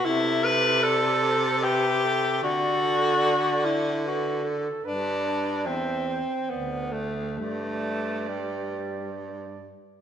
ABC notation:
X:1
M:3/4
L:1/8
Q:1/4=74
K:G
V:1 name="Clarinet"
e2 d c e2 | d4 B A | B d e c d z | B4- B z |]
V:2 name="Alto saxophone"
A4 B A- | A4 A2 | B2 c3 z | d4- d z |]
V:3 name="Tenor saxophone"
E B A2 G2 | F3 E F z | D2 C2 B, A, | A,2 G,2 z2 |]
V:4 name="Baritone saxophone" clef=bass
C,6 | D,6 | G,,2 E,, z D,,2 | G,,4- G,, z |]